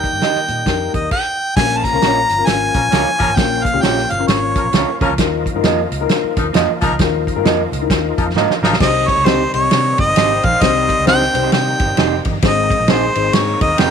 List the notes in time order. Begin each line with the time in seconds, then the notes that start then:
Already playing: D#3 G3 A#3 D#4 G4 A#4 G5
0.04 kick, closed hi-hat, muted conga
0.13 G2
0.21 D#4 G4 A#4 D#5, snare, closed hi-hat, high conga
0.35 muted fingered electric bass stroke, snare
0.48 A#2, closed hi-hat, low conga
0.66 F2 D#4 G4 A#4, kick, snare, closed hi-hat
0.94 D#2 D#5, kick, closed hi-hat, muted conga, low conga
1.11 G5, kick, crash
1.56 A#1 A#2 F3 A#3 C#4 F4 A#4 G#5, kick, snare, crash
1.77 A5
1.84 A#5, kick, closed hi-hat, muted conga
1.93 C#2 C#4 F4 A#4
2.02 A#1 C#4 F4 A#4 C#5, snare, closed hi-hat, high conga
2.29 G1, closed hi-hat
2.38 C4 F4 A#4
2.43 G#1 C#4 G#5, closed hi-hat
2.47 snare
2.73 A#1 F3 A#3 C#4 A#4, kick, closed hi-hat, muted conga, low conga
2.91 C#2 F3 A#3 C#4 F4 A#4 C#5, snare, closed hi-hat, high conga
3.08 high conga
3.18 G1 F3 A#3 C#4 A#4, kick, closed hi-hat, high conga
3.28 G#1
3.36 A#1 A#2 C#4 F4 A#4 G5, kick, snare, closed hi-hat
3.64 F5, kick, closed hi-hat, muted conga
3.74 C#2 C#4 F4 G4
3.82 A#1 C#4 F4 A#4 C#5 G5, snare, closed hi-hat, high conga
3.98 snare
4.10 G1 F5, closed hi-hat, low conga
4.19 C#4 F4 A#4
4.27 G#1 C#5, snare, closed hi-hat
4.55 F3 A#3 C#4 A#4, kick, closed hi-hat, muted conga
4.64 A#1
4.72 C#2 F3 A#3 C#4 F4 A#4 C#5, snare, closed hi-hat, high conga
4.87 high conga
5.01 C2 F3 A#3 C#4 F4 A#4 C#5, kick, closed hi-hat, high conga
5.09 C#2
5.18 D#2 D#3 A#3 D#4 F4 A#4, kick, snare, closed hi-hat
5.46 kick, closed hi-hat, muted conga
5.55 G2 D#4 F4 A#4
5.64 F2 A#3 F4 A#4 D#5, snare, closed hi-hat, high conga
5.92 C#2, closed hi-hat
6.01 D#4 F4 A#4
6.09 snare, closed hi-hat
6.24 muted fingered electric bass stroke
6.36 D#2 F3 A#3 D#4 A#4, kick, closed hi-hat, muted conga, low conga
6.53 F2 F3 A#3 D#4 F4 A#4 D#5, snare, closed hi-hat, high conga
6.69 high conga
6.81 C2 F3 A#3 D#4 A#4, kick, closed hi-hat, high conga
6.92 C#2
6.99 D#2 D#3 D#4 F4 A#4, kick, snare, closed hi-hat
7.27 kick, closed hi-hat, muted conga
7.36 G2 D#4 F4 A#4
7.44 F2 A#3 F4 A#4 D#5, snare, closed hi-hat, high conga
7.72 C#2, closed hi-hat, low conga
7.82 D#4 E4 A#4
7.87 D#2 F4, kick, snare, closed hi-hat
8.17 F2 F3 A#3 D#4 A#4, kick, closed hi-hat, muted conga
8.35 G#2 F3 A#3 D#4 F4 A#4 D#5, snare, high conga
8.49 snare, high conga
8.62 G#1 F3 A#3 D#4 A#4, snare, high conga
8.71 A#1, snare
8.79 C2 C3 D#3 G3 C4 D#4 G4 C5 D#5, kick, snare, crash
9.08 C#5, kick, ride, muted conga
9.17 C#2
9.25 C4 D#4 G4 C5, snare, ride, high conga
9.53 C2 C3 D#4 G4 C#5 D#5, ride
9.70 C3 G3 C4 D#4 C5, snare, ride
9.98 G1 D#5, kick, ride, muted conga, low conga
10.15 G#1 C4 D#4 G4 C5, snare, ride, high conga
10.43 A#1 F5, kick, ride, high conga
10.61 C2 C3 C4 D#4 G4 C5 D#5, kick, snare, ride
10.89 kick, ride, muted conga
10.99 C#2
11.06 C4 D#4 G4 C5 G5, snare, ride, high conga
11.22 snare
11.34 C2 C4 D#4 G4 C5, ride, low conga
11.43 C4 D#4 G4 C5
11.52 C3 G5, snare, ride
11.80 G1, kick, ride, muted conga
11.97 F1 C4 D#4 G4 C5, snare, ride, high conga
12.25 G1, kick, ride, high conga
12.42 G#1 G#2 D#3 G#3 C4 D#4 G#4 C5, kick, snare, ride
12.47 D#5
12.70 kick, ride, muted conga
12.80 A#1
12.88 C4 D#4 G#4 C5, snare, ride, high conga
13.15 G#1 C4 D#4 G#4 C5, ride
13.33 G#2 D#3 A#3 C4 A#4 C#5, snare, ride
13.61 D#2 D#5, kick, ride, muted conga, low conga
13.78 F1 C4 D#4 G#4 C5 G5, snare, ride, high conga